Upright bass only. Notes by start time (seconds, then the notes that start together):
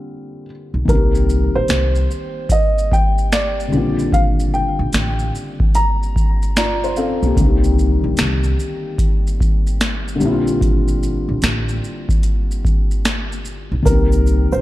0.74 B1
0.88 C2
1.55 A#1
1.69 C2
3.72 A#1
4.79 A#1
4.94 A1
7.23 B1
7.37 C2
8.04 A#1
8.18 C2
10.21 A#1
11.29 A#1
11.43 A1
13.72 B1
13.86 C2
14.53 A#1